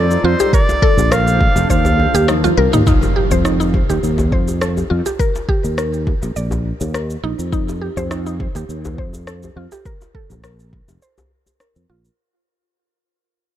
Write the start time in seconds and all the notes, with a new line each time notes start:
Already playing: F2 G3 D#4 F4 A4 D5
0.11 shaker
0.24 F2 F4 C5
0.40 G4, djembe slap, shaker
0.53 A#4 C5 D5, kick, shaker
0.69 djembe slap, djembe tone, shaker
0.82 A4, kick
0.97 A#1, djembe bass, shaker
1.12 A#4 F5, cross-stick, shaker
1.28 shaker
1.41 kick, djembe slap
1.56 F1, djembe slap, shaker
1.70 D#2 C5 F5, kick, shaker
1.85 djembe slap, djembe bass, shaker
1.99 djembe tone
2.14 D#2 G4, djembe tone, shaker
2.28 D#4, cross-stick, high tom, shaker
2.43 F4, high tom, djembe tone, shaker
2.57 C2 A#4, djembe slap, djembe bass
2.73 D#2 D#4, mid tom, shaker
2.87 D#4, kick, impact, shaker
3.02 djembe slap, shaker
3.16 G4
3.31 F2 C5, djembe bass, shaker
3.45 D#4, cross-stick, shaker
3.60 D#4, shaker
3.74 kick, djembe slap, djembe tone
3.89 D#2 G4, djembe slap, shaker
4.03 D#2, shaker
4.18 djembe slap, djembe bass, shaker
4.32 F2 C5, kick
4.48 djembe tone, shaker
4.61 A4, cross-stick, shaker
4.77 djembe tone, shaker
4.90 F2 F4
5.06 G4, djembe slap, shaker
5.19 A#4, kick, shaker
5.35 djembe slap, shaker
5.49 G4, kick, djembe tone
5.64 D#2, shaker
5.78 A#4, cross-stick, shaker
5.94 shaker
6.07 kick, djembe slap, djembe tone
6.23 A#1, djembe slap, shaker
6.36 A#1 D5, shaker
6.51 djembe slap, djembe bass, shaker
6.81 D#2, djembe tone, shaker
6.94 A#4, cross-stick, shaker
7.10 shaker
7.23 A#1 D#4, djembe slap
7.39 F2, shaker
7.52 D#4, kick, shaker
7.69 djembe slap, shaker
7.81 G4
7.97 F2 C5, djembe bass, shaker
8.11 D#4, cross-stick, shaker
8.26 D#4, shaker
8.40 kick, djembe slap, djembe tone
8.55 D#2 G4, djembe slap, shaker
8.69 D#2, shaker
8.85 djembe slap, djembe bass, shaker
8.98 F2 C5, kick
9.13 djembe tone, shaker
9.27 A4, cross-stick, shaker
9.43 djembe tone, shaker
9.56 F2 F4
9.72 G4, djembe slap, shaker
9.85 A#4, kick, shaker
10.01 djembe slap, shaker
10.15 A4, kick, djembe tone
10.30 A#1, djembe bass, shaker
10.44 A#4, cross-stick, shaker
10.59 shaker
10.73 kick, djembe slap, djembe tone
10.88 F1, djembe slap, shaker
11.02 C5, shaker
11.18 djembe slap, djembe bass, shaker
11.46 djembe tone, shaker
11.60 A#4, cross-stick, shaker
11.76 F2, shaker
11.89 A#1 F4, djembe slap
12.05 shaker